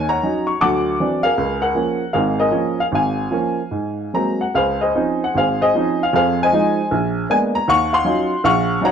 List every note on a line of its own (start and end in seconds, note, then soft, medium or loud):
0.00 0.17 D#2 medium
0.00 0.17 D#3 medium
0.09 0.58 C#5 medium
0.09 0.58 F#5 soft
0.09 0.49 A#5 medium
0.23 0.50 F#3 soft
0.23 0.50 C#4 soft
0.23 0.50 D#4 medium
0.47 0.61 C#6 medium
0.61 0.95 D2 medium
0.61 0.95 F#3 medium
0.61 1.33 F#5 medium
0.61 1.33 A5 medium
0.61 1.26 D6 medium
1.00 1.26 E3 medium
1.00 1.26 F#3 soft
1.00 1.26 C4 soft
1.00 1.26 D4 medium
1.23 1.97 G#4 medium
1.23 1.61 A#4 medium
1.23 1.63 F5 loud
1.38 1.71 C#2 medium
1.62 2.12 A#4 medium
1.62 2.15 F#5 medium
1.75 2.02 F3 soft
1.75 2.02 A#3 soft
1.75 2.02 C#4 medium
2.13 2.47 G#1 medium
2.13 2.47 G#2 medium
2.13 2.38 G#4 medium
2.13 2.38 A#4 medium
2.13 2.39 F5 medium
2.40 3.14 G#4 medium
2.40 3.14 A#4 medium
2.40 2.80 D#5 medium
2.51 2.79 F3 medium
2.51 2.79 A#3 soft
2.51 2.79 C#4 medium
2.80 2.85 F5 medium
2.92 3.26 G#1 medium
2.92 4.11 F5 medium
2.92 4.11 G#5 medium
3.31 3.59 F3 medium
3.31 3.60 A#3 soft
3.31 3.60 C#4 medium
3.71 4.08 G#2 medium
4.14 4.42 F#3 soft
4.14 4.42 G#3 soft
4.14 4.42 A#3 soft
4.14 4.43 C4 soft
4.14 4.42 A#5 medium
4.41 4.55 F#5 medium
4.55 4.89 C#2 medium
4.55 4.81 G#4 medium
4.55 4.81 C5 medium
4.55 4.79 F5 medium
4.81 5.37 G#4 medium
4.81 5.35 C5 medium
4.81 5.22 D#5 medium
4.95 5.22 F3 medium
4.95 5.22 C4 medium
4.95 5.22 C#4 soft
4.95 5.23 D#4 medium
5.24 5.36 F#5 medium
5.35 5.69 G#1 medium
5.35 5.61 G#4 medium
5.35 5.60 C5 medium
5.35 5.63 F5 medium
5.61 6.11 G#4 medium
5.61 6.11 C5 medium
5.61 6.02 D#5 medium
5.75 6.02 F3 medium
5.75 6.02 C4 soft
5.75 6.02 C#4 soft
5.75 6.03 D#4 medium
6.03 6.14 F5 medium
6.13 6.47 F2 medium
6.13 6.88 G#4 medium
6.13 6.42 C5 medium
6.13 6.38 F5 medium
6.43 6.90 C5 medium
6.43 6.90 D#5 medium
6.43 7.29 G#5 medium
6.53 6.79 F3 medium
6.53 6.80 G#3 medium
6.53 6.80 D#4 medium
6.91 7.24 A#1 medium
7.30 7.56 G#3 medium
7.30 7.56 A#3 medium
7.30 7.56 B3 medium
7.30 7.56 D4 medium
7.30 7.36 G#5 medium
7.55 7.68 A#5 medium
7.68 8.01 D#2 medium
7.68 7.91 F5 medium
7.68 7.92 F#5 medium
7.68 7.94 C#6 loud
7.93 8.43 F5 medium
7.93 8.44 F#5 medium
7.93 8.47 C6 loud
8.05 8.32 F#3 medium
8.05 8.32 C#4 medium
8.05 8.32 D#4 medium
8.05 8.32 F4 medium
8.44 8.77 A#1 medium
8.44 8.92 F5 medium
8.44 8.83 F#5 medium
8.44 8.80 C#6 loud
8.81 8.92 F#3 medium
8.81 8.92 C#4 soft
8.81 8.92 D#4 medium
8.81 8.92 F4 medium
8.81 8.92 C#5 medium
8.81 8.92 F#5 medium
8.81 8.92 A#5 loud